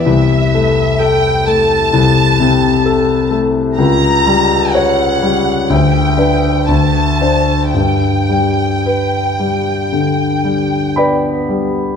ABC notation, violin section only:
X:1
M:4/4
L:1/8
Q:1/4=62
K:G
V:1 name="Violin section"
e2 g a4 z | _b2 f2 g2 a2 | g6 z2 |]